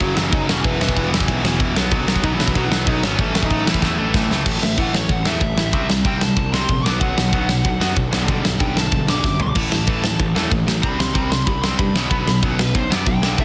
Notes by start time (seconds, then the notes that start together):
0.00 F#1 F#2 C#3 F#3 F#4, kick
0.14 F#1 C#3 E3 F#3 E4, snare
0.19 F#2
0.30 F#1 F#2 D#4 D#5, kick, crash
0.34 C#3 F#3
0.46 E1 E2 B2 E3 C#4 C#5, snare
0.62 E1 E2 B2 E3 B3 B4, kick, crash
0.80 E1 E2 B2 E3, snare
0.89 kick
0.96 E1 E2 B2 E3, kick, crash
1.12 E1 E2 B2 E3, snare
1.20 kick
1.28 B1 E2 B2 E3, kick, crash
1.44 E1 E2 B2 E3, snare
1.60 E1 E2 B2 E3, kick, crash
1.75 B1 B2 F#3 B3, snare
1.91 B1 B2 F#3 B3, kick, crash
2.08 B2 F#3 B3, snare
2.16 kick
2.23 B1 B2 F#3 B3 D#4 D#5, kick, crash
2.32 E3 E4
2.39 B1 B2 F#3 B3, snare
2.48 kick
2.55 B1 B2 F#3 B3 F#4, kick, crash
2.64 E3 E4
2.70 B1 B2 F#3 B3, snare
2.87 B1 B2 F#3 B3 D#4 D#5, kick, crash
3.02 G#1 B2 F#3 B3 C#4 C#5, snare
3.18 A1 A2 E3 A3 C#4 C#5, kick, crash
3.34 A1 A2 E3 A3, snare
3.43 D#4 D#5, kick
3.50 A1 A2 E3 A3, kick, crash
3.66 A1 A2 E3 A3, snare
3.70 E4
3.74 kick
3.82 E2 A2 E3 A3 A4, kick, snare
3.97 A1 A2 E3 A3
4.14 A1 A2 E3 A3, kick, snare
4.30 C#2 A2 E3 A3, snare
4.46 A1 A2 E3 A3, kick, crash
4.60 A1 A2 E3 E5, snare
4.78 A1 A2 E3 A3 F#5, kick, ride
4.93 A2 E3 C#5, snare
5.09 A1 A2 E3 F#5, kick, ride
5.25 E2 A2 E3 A3 E5, snare
5.41 A1 A2 E3, kick, ride
5.56 A1 A2 E3, snare
5.72 C2 C3 G3 C4, kick, ride
5.89 C2 C3 G3, snare
6.05 C2 C3 G3 C4 G5, kick, ride
6.21 C3 G3 A5, snare
6.36 C2 C3 G3, kick, ride
6.53 C3 G3 C4 C6, snare
6.68 A#1 C3 G3, kick, ride
6.85 B1 B2 F#3 B3 D6, snare
7.00 B1 B2 F#3 B3 F#5, kick, ride
7.17 B1 B2 F#3, snare
7.32 B1 B2 F#3 B3, kick, ride
7.49 B2 F#3, snare
7.64 B1 B2 F#3, kick, ride
7.80 F#2 B2 F#3 B3, snare
7.95 B1 B2 F#3, kick, ride
8.11 B1 G2 D3 G3, snare
8.28 B1 G2 D3 G3, kick, ride
8.43 B1 G2 D3, snare
8.60 B1 G2 D3 G3 G5, kick, ride
8.76 G2 D3 A5, snare
8.92 B1 G2 D3, kick, ride
9.07 G2 D3 G3 D6, snare
9.24 F#2 G2 D3, kick, snare
9.40 B1 G2 D3 D6, floor tom
9.55 A1 A2 E3 A3 A5, kick, crash
9.71 A1 A2 E3, snare
9.87 A1 A2 E3 A3, kick, ride
10.04 A2 E3, snare
10.19 A1 A2 E3, kick, ride
10.35 E2 A2 E3 A3, snare
10.51 A1 A2 E3, kick, ride
10.66 A1 A2 E3, snare
10.83 C2 C3 G3 C4 B5, kick, ride
10.98 C2 C3 G3 C6, snare
11.14 C2 C3 G3 C4 B5, kick, ride
11.30 C3 G3 C6, snare
11.45 C2 C3 G3 B5, kick, ride
11.62 C3 G3 C4 C6, snare
11.78 G2 C3 G3 B5, kick, ride
11.94 B1 B2 F#3 B3, snare
12.11 B1 B2 F#3 B3, kick, ride
12.27 B1 B2 F#3, snare
12.43 B1 B2 F#3 B3, kick, ride
12.59 B2 F#3 B4, snare
12.74 B1 B2 F#3 C5, kick, ride
12.89 F#2 B2 F#3 B3 D5, snare
13.06 B1 B2 F#3 G5, kick, ride
13.22 B1 G2 D3 G3, snare
13.38 B1 G2 D3 G3 E5, kick, ride